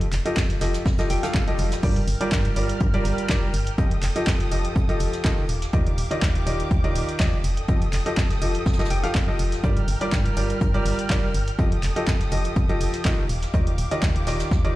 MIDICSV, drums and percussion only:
0, 0, Header, 1, 2, 480
1, 0, Start_track
1, 0, Tempo, 487805
1, 1802, Time_signature, 4, 2, 24, 8
1, 14520, End_track
2, 0, Start_track
2, 0, Title_t, "Drums"
2, 11, Note_on_c, 9, 42, 54
2, 110, Note_off_c, 9, 42, 0
2, 123, Note_on_c, 9, 46, 100
2, 124, Note_on_c, 9, 39, 62
2, 124, Note_on_c, 9, 42, 64
2, 221, Note_off_c, 9, 46, 0
2, 222, Note_off_c, 9, 39, 0
2, 222, Note_off_c, 9, 42, 0
2, 252, Note_on_c, 9, 42, 70
2, 257, Note_off_c, 9, 42, 0
2, 257, Note_on_c, 9, 42, 47
2, 355, Note_off_c, 9, 42, 0
2, 362, Note_on_c, 9, 38, 105
2, 362, Note_on_c, 9, 42, 86
2, 363, Note_on_c, 9, 36, 118
2, 363, Note_on_c, 9, 39, 117
2, 460, Note_off_c, 9, 38, 0
2, 461, Note_off_c, 9, 36, 0
2, 461, Note_off_c, 9, 39, 0
2, 461, Note_off_c, 9, 42, 0
2, 484, Note_on_c, 9, 38, 37
2, 491, Note_on_c, 9, 42, 51
2, 582, Note_off_c, 9, 38, 0
2, 590, Note_off_c, 9, 42, 0
2, 599, Note_on_c, 9, 42, 87
2, 602, Note_on_c, 9, 38, 100
2, 602, Note_on_c, 9, 46, 106
2, 698, Note_off_c, 9, 42, 0
2, 700, Note_off_c, 9, 38, 0
2, 700, Note_off_c, 9, 46, 0
2, 727, Note_on_c, 9, 38, 102
2, 727, Note_on_c, 9, 42, 82
2, 733, Note_off_c, 9, 42, 0
2, 733, Note_on_c, 9, 42, 69
2, 825, Note_off_c, 9, 38, 0
2, 831, Note_off_c, 9, 42, 0
2, 843, Note_on_c, 9, 36, 123
2, 844, Note_on_c, 9, 42, 70
2, 850, Note_on_c, 9, 38, 98
2, 941, Note_off_c, 9, 36, 0
2, 943, Note_off_c, 9, 42, 0
2, 949, Note_off_c, 9, 38, 0
2, 961, Note_on_c, 9, 42, 80
2, 972, Note_off_c, 9, 42, 0
2, 972, Note_on_c, 9, 42, 38
2, 975, Note_on_c, 9, 38, 110
2, 1070, Note_off_c, 9, 42, 0
2, 1074, Note_off_c, 9, 38, 0
2, 1080, Note_on_c, 9, 42, 82
2, 1082, Note_on_c, 9, 46, 107
2, 1083, Note_on_c, 9, 38, 96
2, 1178, Note_off_c, 9, 42, 0
2, 1180, Note_off_c, 9, 46, 0
2, 1181, Note_off_c, 9, 38, 0
2, 1212, Note_on_c, 9, 42, 66
2, 1216, Note_on_c, 9, 38, 111
2, 1220, Note_off_c, 9, 42, 0
2, 1220, Note_on_c, 9, 42, 80
2, 1314, Note_off_c, 9, 38, 0
2, 1318, Note_off_c, 9, 42, 0
2, 1322, Note_on_c, 9, 36, 116
2, 1324, Note_on_c, 9, 39, 122
2, 1421, Note_off_c, 9, 36, 0
2, 1422, Note_off_c, 9, 39, 0
2, 1452, Note_on_c, 9, 42, 38
2, 1550, Note_off_c, 9, 42, 0
2, 1552, Note_on_c, 9, 42, 58
2, 1563, Note_on_c, 9, 46, 101
2, 1651, Note_off_c, 9, 42, 0
2, 1661, Note_off_c, 9, 46, 0
2, 1692, Note_on_c, 9, 42, 73
2, 1694, Note_off_c, 9, 42, 0
2, 1694, Note_on_c, 9, 38, 115
2, 1694, Note_on_c, 9, 42, 79
2, 1792, Note_off_c, 9, 38, 0
2, 1793, Note_off_c, 9, 42, 0
2, 1796, Note_on_c, 9, 42, 87
2, 1802, Note_on_c, 9, 36, 125
2, 1803, Note_on_c, 9, 49, 79
2, 1895, Note_off_c, 9, 42, 0
2, 1901, Note_off_c, 9, 36, 0
2, 1901, Note_off_c, 9, 49, 0
2, 1931, Note_on_c, 9, 42, 54
2, 2030, Note_off_c, 9, 42, 0
2, 2042, Note_on_c, 9, 46, 112
2, 2048, Note_on_c, 9, 42, 64
2, 2140, Note_off_c, 9, 46, 0
2, 2147, Note_off_c, 9, 42, 0
2, 2172, Note_on_c, 9, 42, 76
2, 2270, Note_off_c, 9, 42, 0
2, 2280, Note_on_c, 9, 42, 88
2, 2282, Note_on_c, 9, 36, 124
2, 2283, Note_on_c, 9, 39, 121
2, 2288, Note_on_c, 9, 38, 118
2, 2379, Note_off_c, 9, 42, 0
2, 2380, Note_off_c, 9, 36, 0
2, 2382, Note_off_c, 9, 39, 0
2, 2386, Note_off_c, 9, 38, 0
2, 2410, Note_on_c, 9, 42, 54
2, 2509, Note_off_c, 9, 42, 0
2, 2521, Note_on_c, 9, 46, 105
2, 2523, Note_on_c, 9, 42, 63
2, 2619, Note_off_c, 9, 46, 0
2, 2622, Note_off_c, 9, 42, 0
2, 2651, Note_on_c, 9, 42, 46
2, 2749, Note_off_c, 9, 42, 0
2, 2757, Note_on_c, 9, 42, 80
2, 2761, Note_on_c, 9, 36, 127
2, 2855, Note_off_c, 9, 42, 0
2, 2860, Note_off_c, 9, 36, 0
2, 2891, Note_on_c, 9, 42, 37
2, 2990, Note_off_c, 9, 42, 0
2, 3001, Note_on_c, 9, 46, 105
2, 3004, Note_on_c, 9, 42, 65
2, 3100, Note_off_c, 9, 46, 0
2, 3102, Note_off_c, 9, 42, 0
2, 3131, Note_on_c, 9, 42, 66
2, 3230, Note_off_c, 9, 42, 0
2, 3241, Note_on_c, 9, 36, 123
2, 3242, Note_on_c, 9, 38, 119
2, 3243, Note_on_c, 9, 39, 121
2, 3247, Note_on_c, 9, 42, 92
2, 3339, Note_off_c, 9, 36, 0
2, 3340, Note_off_c, 9, 38, 0
2, 3341, Note_off_c, 9, 39, 0
2, 3345, Note_off_c, 9, 42, 0
2, 3481, Note_on_c, 9, 42, 64
2, 3481, Note_on_c, 9, 46, 110
2, 3579, Note_off_c, 9, 42, 0
2, 3580, Note_off_c, 9, 46, 0
2, 3611, Note_on_c, 9, 42, 76
2, 3709, Note_off_c, 9, 42, 0
2, 3720, Note_on_c, 9, 42, 86
2, 3721, Note_on_c, 9, 36, 127
2, 3818, Note_off_c, 9, 42, 0
2, 3820, Note_off_c, 9, 36, 0
2, 3850, Note_on_c, 9, 42, 54
2, 3948, Note_off_c, 9, 42, 0
2, 3961, Note_on_c, 9, 46, 112
2, 3962, Note_on_c, 9, 39, 65
2, 3964, Note_on_c, 9, 42, 68
2, 4059, Note_off_c, 9, 46, 0
2, 4061, Note_off_c, 9, 39, 0
2, 4062, Note_off_c, 9, 42, 0
2, 4091, Note_on_c, 9, 42, 74
2, 4093, Note_off_c, 9, 42, 0
2, 4093, Note_on_c, 9, 42, 44
2, 4192, Note_off_c, 9, 42, 0
2, 4202, Note_on_c, 9, 36, 126
2, 4202, Note_on_c, 9, 39, 127
2, 4204, Note_on_c, 9, 42, 92
2, 4205, Note_on_c, 9, 38, 111
2, 4300, Note_off_c, 9, 36, 0
2, 4301, Note_off_c, 9, 39, 0
2, 4302, Note_off_c, 9, 42, 0
2, 4304, Note_off_c, 9, 38, 0
2, 4326, Note_on_c, 9, 38, 39
2, 4332, Note_on_c, 9, 42, 53
2, 4425, Note_off_c, 9, 38, 0
2, 4431, Note_off_c, 9, 42, 0
2, 4443, Note_on_c, 9, 46, 114
2, 4448, Note_on_c, 9, 42, 66
2, 4541, Note_off_c, 9, 46, 0
2, 4546, Note_off_c, 9, 42, 0
2, 4572, Note_on_c, 9, 42, 66
2, 4671, Note_off_c, 9, 42, 0
2, 4681, Note_on_c, 9, 36, 127
2, 4692, Note_on_c, 9, 42, 88
2, 4780, Note_off_c, 9, 36, 0
2, 4790, Note_off_c, 9, 42, 0
2, 4811, Note_on_c, 9, 42, 37
2, 4814, Note_off_c, 9, 42, 0
2, 4814, Note_on_c, 9, 42, 49
2, 4913, Note_off_c, 9, 42, 0
2, 4915, Note_on_c, 9, 42, 67
2, 4922, Note_on_c, 9, 46, 109
2, 5013, Note_off_c, 9, 42, 0
2, 5021, Note_off_c, 9, 46, 0
2, 5045, Note_on_c, 9, 38, 42
2, 5052, Note_on_c, 9, 42, 63
2, 5144, Note_off_c, 9, 38, 0
2, 5150, Note_off_c, 9, 42, 0
2, 5158, Note_on_c, 9, 38, 127
2, 5161, Note_on_c, 9, 42, 91
2, 5162, Note_on_c, 9, 36, 127
2, 5164, Note_on_c, 9, 39, 120
2, 5256, Note_off_c, 9, 38, 0
2, 5259, Note_off_c, 9, 42, 0
2, 5260, Note_off_c, 9, 36, 0
2, 5263, Note_off_c, 9, 39, 0
2, 5399, Note_on_c, 9, 42, 63
2, 5402, Note_on_c, 9, 46, 109
2, 5497, Note_off_c, 9, 42, 0
2, 5500, Note_off_c, 9, 46, 0
2, 5530, Note_on_c, 9, 38, 54
2, 5531, Note_on_c, 9, 42, 72
2, 5628, Note_off_c, 9, 38, 0
2, 5630, Note_off_c, 9, 42, 0
2, 5639, Note_on_c, 9, 42, 86
2, 5642, Note_on_c, 9, 36, 127
2, 5737, Note_off_c, 9, 42, 0
2, 5740, Note_off_c, 9, 36, 0
2, 5772, Note_on_c, 9, 42, 53
2, 5870, Note_off_c, 9, 42, 0
2, 5879, Note_on_c, 9, 42, 64
2, 5884, Note_on_c, 9, 46, 113
2, 5977, Note_off_c, 9, 42, 0
2, 5982, Note_off_c, 9, 46, 0
2, 6014, Note_on_c, 9, 42, 72
2, 6112, Note_off_c, 9, 42, 0
2, 6120, Note_on_c, 9, 42, 86
2, 6122, Note_on_c, 9, 36, 126
2, 6125, Note_on_c, 9, 39, 127
2, 6127, Note_on_c, 9, 38, 110
2, 6218, Note_off_c, 9, 42, 0
2, 6220, Note_off_c, 9, 36, 0
2, 6224, Note_off_c, 9, 39, 0
2, 6225, Note_off_c, 9, 38, 0
2, 6253, Note_on_c, 9, 42, 50
2, 6351, Note_off_c, 9, 42, 0
2, 6363, Note_on_c, 9, 46, 118
2, 6366, Note_on_c, 9, 42, 76
2, 6462, Note_off_c, 9, 46, 0
2, 6464, Note_off_c, 9, 42, 0
2, 6491, Note_on_c, 9, 42, 46
2, 6493, Note_off_c, 9, 42, 0
2, 6493, Note_on_c, 9, 42, 65
2, 6592, Note_off_c, 9, 42, 0
2, 6600, Note_on_c, 9, 42, 86
2, 6602, Note_on_c, 9, 36, 127
2, 6698, Note_off_c, 9, 42, 0
2, 6700, Note_off_c, 9, 36, 0
2, 6732, Note_on_c, 9, 42, 36
2, 6831, Note_off_c, 9, 42, 0
2, 6841, Note_on_c, 9, 42, 69
2, 6844, Note_on_c, 9, 46, 116
2, 6939, Note_off_c, 9, 42, 0
2, 6942, Note_off_c, 9, 46, 0
2, 6973, Note_on_c, 9, 42, 63
2, 7071, Note_off_c, 9, 42, 0
2, 7078, Note_on_c, 9, 38, 123
2, 7080, Note_on_c, 9, 42, 88
2, 7082, Note_on_c, 9, 36, 122
2, 7084, Note_on_c, 9, 39, 124
2, 7177, Note_off_c, 9, 38, 0
2, 7179, Note_off_c, 9, 42, 0
2, 7180, Note_off_c, 9, 36, 0
2, 7182, Note_off_c, 9, 39, 0
2, 7318, Note_on_c, 9, 42, 72
2, 7322, Note_on_c, 9, 46, 113
2, 7417, Note_off_c, 9, 42, 0
2, 7421, Note_off_c, 9, 46, 0
2, 7451, Note_on_c, 9, 42, 67
2, 7550, Note_off_c, 9, 42, 0
2, 7558, Note_on_c, 9, 42, 84
2, 7562, Note_on_c, 9, 36, 127
2, 7657, Note_off_c, 9, 42, 0
2, 7660, Note_off_c, 9, 36, 0
2, 7692, Note_on_c, 9, 42, 50
2, 7791, Note_off_c, 9, 42, 0
2, 7798, Note_on_c, 9, 42, 76
2, 7802, Note_on_c, 9, 46, 105
2, 7804, Note_on_c, 9, 39, 61
2, 7897, Note_off_c, 9, 42, 0
2, 7901, Note_off_c, 9, 46, 0
2, 7902, Note_off_c, 9, 39, 0
2, 7931, Note_on_c, 9, 42, 66
2, 7934, Note_off_c, 9, 42, 0
2, 7934, Note_on_c, 9, 42, 44
2, 8032, Note_off_c, 9, 42, 0
2, 8041, Note_on_c, 9, 42, 85
2, 8042, Note_on_c, 9, 36, 126
2, 8043, Note_on_c, 9, 39, 117
2, 8044, Note_on_c, 9, 38, 97
2, 8139, Note_off_c, 9, 42, 0
2, 8140, Note_off_c, 9, 36, 0
2, 8142, Note_off_c, 9, 39, 0
2, 8143, Note_off_c, 9, 38, 0
2, 8171, Note_on_c, 9, 38, 39
2, 8172, Note_on_c, 9, 42, 47
2, 8269, Note_off_c, 9, 38, 0
2, 8270, Note_off_c, 9, 42, 0
2, 8278, Note_on_c, 9, 42, 74
2, 8282, Note_on_c, 9, 46, 113
2, 8376, Note_off_c, 9, 42, 0
2, 8381, Note_off_c, 9, 46, 0
2, 8412, Note_on_c, 9, 42, 64
2, 8510, Note_off_c, 9, 42, 0
2, 8519, Note_on_c, 9, 42, 70
2, 8522, Note_on_c, 9, 36, 127
2, 8528, Note_on_c, 9, 38, 88
2, 8590, Note_off_c, 9, 42, 0
2, 8590, Note_on_c, 9, 42, 64
2, 8593, Note_off_c, 9, 38, 0
2, 8593, Note_on_c, 9, 38, 84
2, 8620, Note_off_c, 9, 36, 0
2, 8652, Note_off_c, 9, 42, 0
2, 8652, Note_on_c, 9, 42, 34
2, 8653, Note_off_c, 9, 38, 0
2, 8653, Note_on_c, 9, 38, 93
2, 8655, Note_off_c, 9, 42, 0
2, 8655, Note_on_c, 9, 42, 62
2, 8707, Note_off_c, 9, 42, 0
2, 8707, Note_on_c, 9, 42, 67
2, 8710, Note_off_c, 9, 38, 0
2, 8710, Note_on_c, 9, 38, 79
2, 8761, Note_off_c, 9, 42, 0
2, 8761, Note_on_c, 9, 42, 72
2, 8761, Note_on_c, 9, 46, 111
2, 8808, Note_off_c, 9, 38, 0
2, 8859, Note_off_c, 9, 42, 0
2, 8859, Note_off_c, 9, 46, 0
2, 8891, Note_on_c, 9, 42, 65
2, 8895, Note_on_c, 9, 38, 42
2, 8990, Note_off_c, 9, 42, 0
2, 8994, Note_off_c, 9, 38, 0
2, 9002, Note_on_c, 9, 36, 119
2, 9003, Note_on_c, 9, 39, 110
2, 9004, Note_on_c, 9, 42, 91
2, 9007, Note_on_c, 9, 38, 123
2, 9101, Note_off_c, 9, 36, 0
2, 9101, Note_off_c, 9, 39, 0
2, 9103, Note_off_c, 9, 42, 0
2, 9105, Note_off_c, 9, 38, 0
2, 9238, Note_on_c, 9, 42, 63
2, 9242, Note_on_c, 9, 46, 115
2, 9336, Note_off_c, 9, 42, 0
2, 9340, Note_off_c, 9, 46, 0
2, 9370, Note_on_c, 9, 42, 65
2, 9377, Note_on_c, 9, 38, 53
2, 9469, Note_off_c, 9, 42, 0
2, 9476, Note_off_c, 9, 38, 0
2, 9480, Note_on_c, 9, 42, 95
2, 9482, Note_on_c, 9, 36, 123
2, 9578, Note_off_c, 9, 42, 0
2, 9580, Note_off_c, 9, 36, 0
2, 9610, Note_on_c, 9, 42, 49
2, 9709, Note_off_c, 9, 42, 0
2, 9721, Note_on_c, 9, 46, 107
2, 9723, Note_on_c, 9, 42, 63
2, 9819, Note_off_c, 9, 46, 0
2, 9822, Note_off_c, 9, 42, 0
2, 9851, Note_on_c, 9, 42, 68
2, 9949, Note_off_c, 9, 42, 0
2, 9957, Note_on_c, 9, 38, 118
2, 9962, Note_on_c, 9, 36, 122
2, 9963, Note_on_c, 9, 39, 115
2, 9963, Note_on_c, 9, 42, 78
2, 10055, Note_off_c, 9, 38, 0
2, 10060, Note_off_c, 9, 36, 0
2, 10061, Note_off_c, 9, 39, 0
2, 10061, Note_off_c, 9, 42, 0
2, 10092, Note_on_c, 9, 42, 49
2, 10190, Note_off_c, 9, 42, 0
2, 10198, Note_on_c, 9, 42, 67
2, 10202, Note_on_c, 9, 46, 109
2, 10296, Note_off_c, 9, 42, 0
2, 10301, Note_off_c, 9, 46, 0
2, 10330, Note_on_c, 9, 42, 45
2, 10332, Note_off_c, 9, 42, 0
2, 10332, Note_on_c, 9, 42, 61
2, 10431, Note_off_c, 9, 42, 0
2, 10439, Note_on_c, 9, 42, 85
2, 10442, Note_on_c, 9, 36, 122
2, 10537, Note_off_c, 9, 42, 0
2, 10540, Note_off_c, 9, 36, 0
2, 10571, Note_on_c, 9, 42, 33
2, 10670, Note_off_c, 9, 42, 0
2, 10682, Note_on_c, 9, 46, 112
2, 10686, Note_on_c, 9, 42, 70
2, 10780, Note_off_c, 9, 46, 0
2, 10785, Note_off_c, 9, 42, 0
2, 10812, Note_on_c, 9, 42, 65
2, 10911, Note_off_c, 9, 42, 0
2, 10921, Note_on_c, 9, 36, 121
2, 10921, Note_on_c, 9, 38, 108
2, 10924, Note_on_c, 9, 39, 112
2, 10924, Note_on_c, 9, 42, 86
2, 11020, Note_off_c, 9, 36, 0
2, 11020, Note_off_c, 9, 38, 0
2, 11023, Note_off_c, 9, 39, 0
2, 11023, Note_off_c, 9, 42, 0
2, 11160, Note_on_c, 9, 42, 65
2, 11163, Note_on_c, 9, 46, 104
2, 11259, Note_off_c, 9, 42, 0
2, 11261, Note_off_c, 9, 46, 0
2, 11293, Note_on_c, 9, 42, 64
2, 11391, Note_off_c, 9, 42, 0
2, 11402, Note_on_c, 9, 36, 121
2, 11405, Note_on_c, 9, 42, 92
2, 11500, Note_off_c, 9, 36, 0
2, 11504, Note_off_c, 9, 42, 0
2, 11532, Note_on_c, 9, 42, 50
2, 11631, Note_off_c, 9, 42, 0
2, 11635, Note_on_c, 9, 42, 74
2, 11642, Note_on_c, 9, 46, 104
2, 11643, Note_on_c, 9, 39, 58
2, 11734, Note_off_c, 9, 42, 0
2, 11740, Note_off_c, 9, 46, 0
2, 11742, Note_off_c, 9, 39, 0
2, 11772, Note_on_c, 9, 42, 68
2, 11773, Note_off_c, 9, 42, 0
2, 11773, Note_on_c, 9, 42, 43
2, 11871, Note_off_c, 9, 42, 0
2, 11880, Note_on_c, 9, 38, 108
2, 11881, Note_on_c, 9, 36, 113
2, 11883, Note_on_c, 9, 39, 115
2, 11886, Note_on_c, 9, 42, 86
2, 11978, Note_off_c, 9, 38, 0
2, 11980, Note_off_c, 9, 36, 0
2, 11981, Note_off_c, 9, 39, 0
2, 11985, Note_off_c, 9, 42, 0
2, 12011, Note_on_c, 9, 38, 36
2, 12012, Note_on_c, 9, 42, 50
2, 12109, Note_off_c, 9, 38, 0
2, 12110, Note_off_c, 9, 42, 0
2, 12116, Note_on_c, 9, 42, 65
2, 12121, Note_on_c, 9, 46, 105
2, 12214, Note_off_c, 9, 42, 0
2, 12220, Note_off_c, 9, 46, 0
2, 12251, Note_on_c, 9, 42, 67
2, 12349, Note_off_c, 9, 42, 0
2, 12359, Note_on_c, 9, 42, 82
2, 12361, Note_on_c, 9, 36, 127
2, 12458, Note_off_c, 9, 42, 0
2, 12460, Note_off_c, 9, 36, 0
2, 12489, Note_on_c, 9, 42, 43
2, 12491, Note_off_c, 9, 42, 0
2, 12491, Note_on_c, 9, 42, 35
2, 12589, Note_off_c, 9, 42, 0
2, 12602, Note_on_c, 9, 46, 104
2, 12604, Note_on_c, 9, 42, 68
2, 12700, Note_off_c, 9, 46, 0
2, 12702, Note_off_c, 9, 42, 0
2, 12719, Note_on_c, 9, 38, 51
2, 12730, Note_on_c, 9, 42, 67
2, 12817, Note_off_c, 9, 38, 0
2, 12829, Note_off_c, 9, 42, 0
2, 12834, Note_on_c, 9, 42, 89
2, 12841, Note_on_c, 9, 36, 121
2, 12842, Note_on_c, 9, 39, 116
2, 12843, Note_on_c, 9, 38, 119
2, 12932, Note_off_c, 9, 42, 0
2, 12940, Note_off_c, 9, 36, 0
2, 12941, Note_off_c, 9, 39, 0
2, 12942, Note_off_c, 9, 38, 0
2, 13081, Note_on_c, 9, 46, 99
2, 13082, Note_on_c, 9, 42, 74
2, 13179, Note_off_c, 9, 46, 0
2, 13180, Note_off_c, 9, 42, 0
2, 13211, Note_on_c, 9, 38, 54
2, 13211, Note_on_c, 9, 42, 66
2, 13309, Note_off_c, 9, 42, 0
2, 13310, Note_off_c, 9, 38, 0
2, 13318, Note_on_c, 9, 42, 90
2, 13321, Note_on_c, 9, 36, 120
2, 13417, Note_off_c, 9, 42, 0
2, 13420, Note_off_c, 9, 36, 0
2, 13451, Note_on_c, 9, 42, 56
2, 13549, Note_off_c, 9, 42, 0
2, 13560, Note_on_c, 9, 42, 65
2, 13561, Note_on_c, 9, 46, 104
2, 13658, Note_off_c, 9, 42, 0
2, 13659, Note_off_c, 9, 46, 0
2, 13691, Note_on_c, 9, 42, 74
2, 13789, Note_off_c, 9, 42, 0
2, 13798, Note_on_c, 9, 38, 113
2, 13798, Note_on_c, 9, 42, 95
2, 13801, Note_on_c, 9, 36, 111
2, 13803, Note_on_c, 9, 39, 120
2, 13896, Note_off_c, 9, 38, 0
2, 13896, Note_off_c, 9, 42, 0
2, 13900, Note_off_c, 9, 36, 0
2, 13901, Note_off_c, 9, 39, 0
2, 13931, Note_on_c, 9, 42, 53
2, 14029, Note_off_c, 9, 42, 0
2, 14040, Note_on_c, 9, 46, 105
2, 14045, Note_on_c, 9, 42, 85
2, 14046, Note_on_c, 9, 38, 114
2, 14139, Note_off_c, 9, 46, 0
2, 14143, Note_off_c, 9, 42, 0
2, 14144, Note_off_c, 9, 38, 0
2, 14163, Note_on_c, 9, 42, 80
2, 14170, Note_on_c, 9, 38, 106
2, 14171, Note_off_c, 9, 42, 0
2, 14171, Note_on_c, 9, 42, 66
2, 14268, Note_off_c, 9, 38, 0
2, 14270, Note_off_c, 9, 42, 0
2, 14279, Note_on_c, 9, 42, 81
2, 14281, Note_on_c, 9, 36, 127
2, 14286, Note_on_c, 9, 38, 99
2, 14377, Note_off_c, 9, 42, 0
2, 14380, Note_off_c, 9, 36, 0
2, 14385, Note_off_c, 9, 38, 0
2, 14412, Note_on_c, 9, 42, 38
2, 14511, Note_off_c, 9, 42, 0
2, 14520, End_track
0, 0, End_of_file